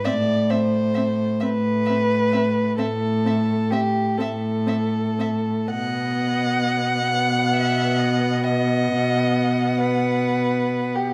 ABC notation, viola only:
X:1
M:12/8
L:1/8
Q:3/8=44
K:Ador
V:1 name="Viola"
C C C C C C C C C C C C | B,3 B,8- B, |]